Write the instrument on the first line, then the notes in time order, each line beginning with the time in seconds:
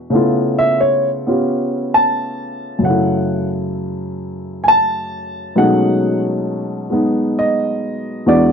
upright piano
Already playing: G#3 B3 D4 F#4
0.10 C#3 A3 B3 E4
0.15 F4
0.59 E5
0.81 C#5
1.27 B3 C#4 F4 G4
1.94 A5
2.79 F#2 C#3
2.85 A3 F#5
2.90 E4
4.64 G#5
4.68 A5
5.56 B2 F#3 G#3 A3 C#4 D#4 F#5
6.90 G#3 B3 D#4
7.39 D#5
8.26 E2 E3 G#3 B3 D4 F#4 D5